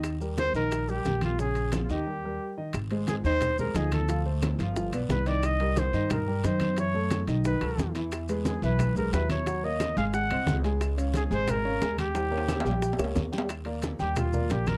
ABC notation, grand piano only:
X:1
M:4/4
L:1/8
Q:1/4=178
K:Eb
V:1 name="Grand piano"
[E,Ee] [G,GB]2 [E,Ee]2 [G,GB] [G,GB]2 | [_D,_D_d]2 [F,FA] [E,Ee] [G,GB] [G,GB]2 [E,Ee] | [K:Ebmix] z [A,Ac]2 [E,Ee]2 [A,Ac] [F,Ee]2 | [F,Ff] [=A,=Ac]2 [F,Ff] [F,Ff] [=B,=B=d]2 [E,Ee]- |
[E,Ee] [G,GB]2 [E,Ee]2 [G,GB] [E,Ee]2 | [_F,_F_f] [=A,=Ad]2 [^D,^D^d] [D,Dd] [^F,^FA]2 [_F,_Ff]- | [_F,_F_f] [^G,^G=B]2 [=E,=E=e]2 [G,GB] [^F,Ee]2 | [_G,_G_g] [B,Bd]2 [A,Aa] [A,Aa] [Cce]2 [A,Aa]- |
[A,Aa] [Ddf]2 [A,Aa]2 [Ddf] [A,Aa]2 | [G,Gg] [B,Bd]2 [G,Gg] [G,Gg] [B,Bd]2 [G,Gg] | [K:Eb] z [B,Bd]2 [G,Gg]2 [B,Bd] [B,Bd]2 |]